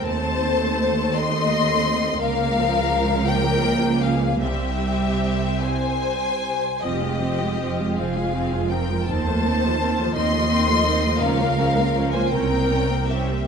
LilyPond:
<<
  \new Staff \with { instrumentName = "Violin section" } { \time 6/8 \key c \phrygian \tempo 4. = 55 a''4. c'''4. | f''4. g''4 f''8 | e''4. aes''4. | ees''4. f''4 g''8 |
a''4. c'''4. | f''4~ f''16 aes''16 g''4 e''8 | }
  \new Staff \with { instrumentName = "Violin section" } { \time 6/8 \key c \phrygian c''4. ees''4. | bes'4. bes'4 aes'8 | g'4. c''4. | g'4. aes'4 bes'8 |
c''4. ees''4. | bes'4~ bes'16 c''16 bes'4 g'8 | }
  \new Staff \with { instrumentName = "Viola section" } { \time 6/8 \key c \phrygian << { c'2. | bes4. bes4. | c'2~ c'8. r16 | c'16 f'16 c'16 f'16 c'16 f'16 c'16 f'16 c'16 f'16 c'16 f'16 |
c'16 a16 c'16 a16 c'16 a16 c'16 a16 c'16 a16 c'16 a16 | des'16 f'16 des'16 f'16 des'16 f'16 des'16 c'16 des'16 c'16 des'16 c'16 | } \\ { a2. | bes8 f8 f2 | g2~ g8. r16 | f16 aes16 f16 aes16 f16 aes16 f16 aes16 f16 aes16 f16 aes16 |
ees16 f16 ees16 f16 ees16 f16 ees16 f16 ees16 f16 ees16 f16 | f16 bes16 f16 bes16 f16 bes16 c'16 bes16 c'16 bes16 c'16 bes16 | } >> }
  \new Staff \with { instrumentName = "Cello section" } { \clef bass \time 6/8 \key c \phrygian ees,2. | des,2. | c,2~ c,8. r16 | f,4. f,4. |
ees,4. ees,4. | des,4. c,4. | }
  \new Staff \with { instrumentName = "Double bass section" } { \clef bass \time 6/8 \key c \phrygian ees,2. | des,2. | c,2~ c,8. r16 | f,,4. f,,4. |
ees,4. ees,4. | des,4. c,4. | }
>>